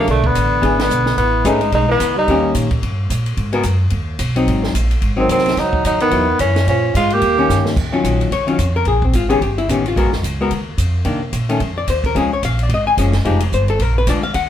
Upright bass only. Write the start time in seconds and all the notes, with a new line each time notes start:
0.08 B1
0.35 A1
0.62 G#1
0.90 B1
1.17 A1
1.45 G#1
1.72 B1
2.00 C#2
2.27 D#2
2.54 A#2
2.82 G2
3.10 A#2
3.37 G#2
3.64 F#2
3.92 D#2
4.19 B1
4.47 G#1
4.74 A#1
5.02 G#1
5.29 C2
5.57 C#2
5.84 D#2
6.11 E2
6.39 F#2
6.67 A#2
6.94 G#2
7.22 D#2
7.49 G2
7.76 D#2
8.04 A#1
8.31 C#2
8.48 muted upright bass stroke
8.58 F2
8.85 A#1
9.13 G#1
9.42 G1
9.68 A1
9.96 B1
10.05 G#1
10.13 F#1
10.23 C#2
10.51 D#2
10.78 F2
11.05 C3
11.33 A#2
11.60 F2
11.88 D#2
12.15 C#2
12.43 A#1
12.69 G#1
12.97 F#1
13.25 F1
13.52 G1
13.79 A#1
14.07 D2
14.35 D#2